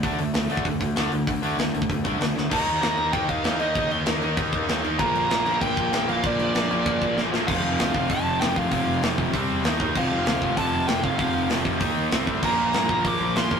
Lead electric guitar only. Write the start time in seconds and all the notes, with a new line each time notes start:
2.53 A#5
3.13 G5
3.29 F5
3.60 D#5
4.99 A#5
5.61 G5
6.09 F5
6.26 D5
7.48 F5
8.11 A5
8.40 G5
8.57 F5
8.72 F5
9.98 F5
10.58 A5
10.88 G5
11.03 F5
11.18 F5
12.45 A#5
13.08 D6
13.37 C6